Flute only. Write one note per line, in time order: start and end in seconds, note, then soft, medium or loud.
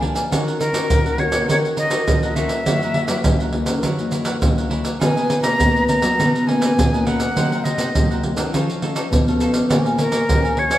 0.59 1.21 A#4 medium
1.19 1.49 C#5 medium
1.50 1.57 C#5 medium
1.78 2.37 D#5 medium
2.35 3.54 E5 medium
5.01 5.42 G#5 medium
5.42 5.85 A#5 loud
5.88 6.49 A#5 medium
6.47 7.08 G#5 medium
7.07 7.66 F#5 medium
7.64 8.23 D#5 medium
10.00 10.60 A#4 medium
10.59 10.78 C#5 loud